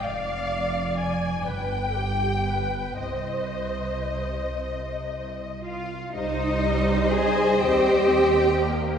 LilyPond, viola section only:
\new Staff \with { instrumentName = "Viola section" } { \time 6/8 \key c \minor \tempo 4. = 41 << { d''4. b'8 g'8 b'8 | c''2~ c''16 r8. | ees'4. c'4. | } \\ { r2. | r2. | g4. g8 c'8 bes8 | } >> }